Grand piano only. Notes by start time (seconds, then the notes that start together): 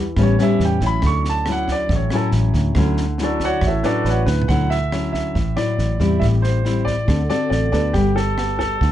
0.23 C#5
0.42 E5
0.65 G5
0.86 B5
1.06 C#6
1.30 A5
1.52 F#5
1.72 D5
1.95 C#5
2.15 A4
3.23 D4 F#4 A4 D5
3.44 F#4 C#5 D5 F#5
3.67 E4 A4 C#5 E5
3.83 D4 F#4 A4 B4 D5
4.05 B4 D5 F#5
4.10 F#4 C#5
4.25 B4
4.48 F#5
4.70 E5
5.13 E5
5.56 D5
6.20 E5
6.42 C5
6.85 D5
7.30 D5
7.50 D5
7.72 D5
7.93 G4
8.16 A4
8.59 A4